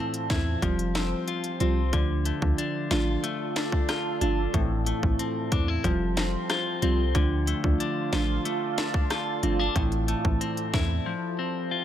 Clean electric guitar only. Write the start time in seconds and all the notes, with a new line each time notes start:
Already playing: A2 A3 C4
0.30 E4
0.63 F3
0.95 C4
1.28 F4
1.60 C4
1.93 D3
2.26 A3
2.58 D4
2.91 F4
3.24 A3
3.56 D4
3.89 F4
4.21 D4
4.54 A2
4.87 A3
5.19 C4
5.52 D4
5.68 E4
5.85 F3
6.17 C4
6.50 F4
6.82 C4
7.15 D3
7.48 A3
7.80 D4
8.13 F4
8.45 A3
8.78 D4
9.11 F4
9.43 C4
9.59 D4
9.76 A2
10.08 A3
10.41 C4
10.73 E4
11.06 F3
11.39 C4
11.71 F4